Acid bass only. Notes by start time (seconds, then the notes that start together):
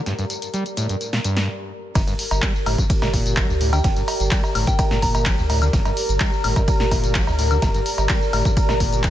0.06 G2
0.19 G2
0.54 G3
0.77 A2
0.89 G2
1.13 A#2
1.24 G2
1.95 G2
2.07 G2
2.43 G3
2.66 A2
2.78 G2
3.02 A#2
3.13 A#2
3.37 G3
3.49 G2
3.61 A2
3.73 D3
3.84 G2
3.96 G2
4.31 G3
4.55 A2
4.67 G2
4.91 A#2
5.02 A#2
5.26 G3
5.38 G2
5.50 A2
5.62 D3
5.73 G2
5.86 G2
6.21 G3
6.44 A2
6.56 G2
6.80 A#2
6.91 A#2
7.15 G3
7.27 G2
7.39 A2
7.51 D3
7.62 G2
7.75 G2
8.10 G3
8.33 A2
8.45 G2
8.69 A#2
8.80 A#2
9.04 G3